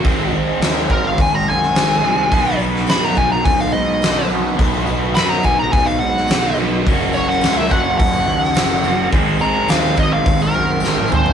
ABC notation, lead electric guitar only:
X:1
M:4/4
L:1/16
Q:1/4=106
K:Cblyd
V:1 name="Lead electric guitar"
B2 z4 B f a b a6- | a2 z2 c' b a b a f e4 z2 | z4 c' b a b a f g4 z2 | z2 d g2 _f g2 g8 |
z2 b2 f2 e f2 B4- B =c2 |]